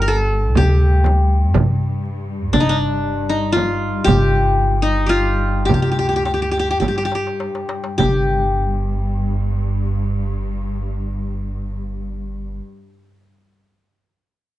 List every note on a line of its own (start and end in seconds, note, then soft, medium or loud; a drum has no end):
0.00 0.55 G1 medium
0.00 7.97 G2 medium
0.00 0.36 G4 medium
0.00 0.14 A#4 medium
0.08 1.26 A4 medium
0.55 1.54 D2 medium
0.55 2.00 G4 medium
0.55 frame drum medium
0.55 darbuka dum medium
1.04 darbuka tek medium
1.04 frame drum medium
1.54 2.53 G2 medium
1.54 frame drum medium
1.54 darbuka dum medium
2.06 darbuka ka soft
2.53 4.04 G1 medium
2.53 2.66 D4 medium
2.53 frame drum medium
2.53 darbuka dum medium
2.60 2.75 D#4 medium
2.69 3.35 D4 medium
2.82 darbuka ka soft
3.07 darbuka ka soft
3.29 4.74 D#4 medium
3.52 4.87 F4 medium
3.56 darbuka tek medium
3.56 frame drum medium
4.04 5.70 G1 medium
4.04 5.06 G4 medium
4.04 frame drum medium
4.09 darbuka dum medium
4.36 darbuka ka soft
4.62 darbuka ka soft
4.82 6.27 D#4 medium
5.06 6.44 F4 medium
5.06 5.65 G4 medium
5.65 6.81 D2 medium
5.65 5.74 G4 medium
5.65 frame drum medium
5.71 5.82 G4 soft
5.71 darbuka dum medium
5.82 5.91 G4 soft
5.92 5.98 G4 soft
5.99 6.08 G4 medium
6.09 6.16 G4 soft
6.16 6.25 G4 medium
6.25 6.33 G4 soft
6.25 darbuka tek medium
6.34 6.42 G4 soft
6.42 6.51 G4 soft
6.51 6.59 G4 medium
6.59 6.70 G4 medium
6.71 6.79 G4 soft
6.80 7.95 G2 medium
6.80 6.88 G4 soft
6.80 darbuka tek soft
6.80 frame drum medium
6.88 6.97 G4 soft
6.97 7.05 G4 soft
6.97 darbuka ka soft
7.05 7.15 G4 medium
7.12 7.97 G4 soft
7.12 darbuka tek medium
7.27 darbuka ka medium
7.40 darbuka tek medium
7.55 darbuka ka medium
7.69 darbuka tek medium
7.84 darbuka ka medium
7.98 12.59 G1 medium
7.98 12.57 G2 medium
7.98 12.57 G4 medium
7.98 darbuka dum medium
7.98 frame drum medium